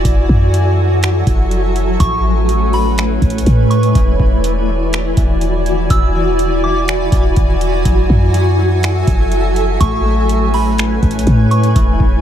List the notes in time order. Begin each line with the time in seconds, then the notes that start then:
Already playing: E4 F#4 G#5
0.05 F#1 F#3 A4 E5, kick, closed hi-hat
0.29 F#2, kick
0.54 closed hi-hat
1.03 finger snap, closed hi-hat
1.27 F#1, kick, closed hi-hat
1.51 closed hi-hat
1.76 closed hi-hat
2.00 A1 A3 C#4 E4 B4 C#5 C#6, kick, closed hi-hat
2.49 closed hi-hat
2.73 B5, open hi-hat
2.98 finger snap, closed hi-hat
3.22 A1, kick, closed hi-hat
3.30 closed hi-hat
3.38 closed hi-hat
3.46 A2, kick, closed hi-hat
3.70 C#6, closed hi-hat
3.83 closed hi-hat
3.95 E1 E3 E4 F#4 D5 G#5, kick, closed hi-hat
4.20 E1 E3, kick
4.44 closed hi-hat
4.69 E3
4.93 finger snap, closed hi-hat
5.17 E1 E3, kick, closed hi-hat
5.41 closed hi-hat
5.66 closed hi-hat
5.90 E1 E3 E6, kick, closed hi-hat
6.15 E3
6.39 closed hi-hat
6.64 E3 D6
6.88 finger snap, closed hi-hat
7.12 E1 E3, kick, closed hi-hat
7.36 E1, kick, closed hi-hat
7.61 closed hi-hat
7.85 F#1 F#3 A4 E5, kick, closed hi-hat
8.10 F#2 F#3, kick
8.34 closed hi-hat
8.59 F#3
8.83 finger snap, closed hi-hat
9.07 F#1 F#3, kick, closed hi-hat
9.32 closed hi-hat
9.56 closed hi-hat
9.80 A1 A3 C#4 E4 B4 C#5 C#6, kick, closed hi-hat
10.05 A3
10.29 closed hi-hat
10.54 A3 B5, open hi-hat
10.78 finger snap, closed hi-hat
11.03 A1 A3, kick, closed hi-hat
11.11 closed hi-hat
11.19 closed hi-hat
11.27 A2, kick, closed hi-hat
11.51 C#6, closed hi-hat
11.64 closed hi-hat
11.75 E1 E3 E4 F#4 D5 G#5, kick, closed hi-hat
12.00 E1 E3, kick